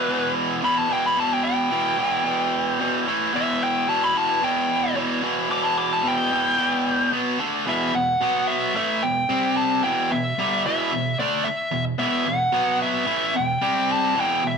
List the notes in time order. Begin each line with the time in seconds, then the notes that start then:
Already playing: B4
0.09 E2 B2 E3
0.62 E2 B2 E3 B5
0.77 A5
0.89 E2 B2 E3 G5
1.06 B5
1.17 E2 B2 E3 A5
1.34 G5
1.45 G5
1.71 E2 B2 E3
1.97 E2 B2 E3
2.24 E2 B2 E3
2.79 E2 B2 E3
3.07 A2 E3 A3
3.33 E2 B2 E3 E5
3.64 G5
3.87 E2 B2 E3 A5
4.04 B5
4.14 E2 B2 E3 A5
4.41 E2 B2 E3 G5
4.95 E2 B2 E3
5.23 E2 B2 E3
5.50 E2 B2 E3 D6
5.63 A5
5.78 D6
5.93 A5
6.03 E2 B2 E3
6.08 G5
6.31 E2 B2 E3
6.58 E2 B2 E3
7.13 B2 F#3 B3
7.39 D3 A3 D4
7.66 E2 B2 E3 E5
7.94 E2 B2 F#5
8.21 B2 F#3 B3
8.47 E5
8.74 A2 E3 A3 E5
9.03 E2 B2 G5
9.29 C3 G3 C4
9.57 A5
9.83 E2 B2 E3 G5
10.10 E2 B2 E5
10.38 G2 D3 G3
10.66 E2 B2 E3 E5
10.92 E2 B2
11.19 D3 A3 D4 D5
11.45 E5, muted distorted electric guitar stroke
11.71 E2 B2
11.98 E2 B2 E3 E5
12.26 E2 B2 F#5
12.52 B2 F#3 B3
12.82 E5
13.06 A2 E3 A3
13.34 E2 B2 G5
13.62 C3 G3 C4
13.92 A5
14.15 E2 B2 E3
14.20 G5
14.43 E2 B2
14.47 E5